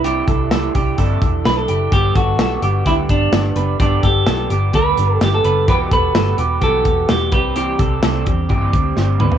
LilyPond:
<<
  \new Staff \with { instrumentName = "Clean electric guitar" } { \time 4/4 \key g \major \tempo 4 = 128 g'8 a'8 a'8 g'8 a'4. g'8 | g'8 a'8 a'8 g'8 g'4. b'8 | g'8 a'8 a'8 g'8 g'4. b'8 | g'8 a'8 a'8 g'8 g'4. b'8 |
g'8 a'8 a'8 g'8 g'4. b'8 | }
  \new Staff \with { instrumentName = "Clean electric guitar" } { \time 4/4 \key g \major e'4. r4. b'16 a'8. | g'8 fis'4. e'8 d'4. | d'8 g'4. b'4 g'16 a'8. | b'8 b'4. a'4 g'8 g'8~ |
g'4. r2 r8 | }
  \new Staff \with { instrumentName = "Clean electric guitar" } { \time 4/4 \key g \major <c g d' e' g'>8 <d' e' g'>8 <g d' e' g'>8 <d' e' g'>8 <c g d' e' g'>8 <d' e' g'>8 <g d' e' g'>8 <d' e' g'>8 | <g, d g b d' g'>8 <g b d' g'>8 <g b d' g'>8 <g b d' g'>8 <g, d g b d' g'>8 <g b d' g'>8 <g b d' g'>8 <g b d' g'>8 | <g, d g b d' g'>8 <g b d' g'>8 <g b d' g'>8 <g b d' g'>8 <g, d g b d' g'>8 <g b d' g'>8 <g b d' g'>8 <g b d' g'>8 | <e g b fis' g'>8 <b fis' g'>8 <g b fis' g'>8 <b fis' g'>8 <e g b fis' g'>8 <b fis' g'>8 <g b fis' g'>8 <g c' d' g'>8 |
<c e g c' d' g'>8 <g c' d' g'>8 <g c' d' g'>8 <g c' d' g'>8 <c e g c' d' g'>8 <g c' d' g'>8 <g c' d' g'>8 <g c' d' g'>8 | }
  \new Staff \with { instrumentName = "Fingered electric bass" } { \clef bass \time 4/4 \key g \major c,8 c,4 c,8 g,,8 e,,8 b,,8 fis,,8 | g,,8 g,,8 b,,8 g,,8 d,8 g,,8 g,,8 fis,,8 | g,,8 g,,8 b,,8 g,,8 d,8 g,,8 g,,8 fis,,8 | e,,8 e,,8 g,,8 e,,8 b,,8 e,,8 e,,8 c,8~ |
c,8 c,8 c,8 e,8 g,,8 d,8 g,,8 d,8 | }
  \new DrumStaff \with { instrumentName = "Drums" } \drummode { \time 4/4 hh8 <hh bd>8 <hh sn>8 <hh bd>8 <hh bd>8 <hh bd>8 <hh sn>8 hh8 | <hh bd>8 <hh bd>8 <hh sn>8 hh8 <hh bd>8 <hh bd>8 <hh sn>8 hh8 | <hh bd>8 <hh bd>8 <hh sn>8 hh8 <hh bd>8 hh8 <hh sn>8 hh8 | <hh bd>8 <hh bd>8 <hh sn>8 hh8 <hh bd>8 <hh bd>8 <hh sn>8 <hh bd>8 |
hh8 <hh bd>8 <hh sn>8 <hh bd>8 <hh bd>8 <hh bd>8 sn8 toml16 tomfh16 | }
>>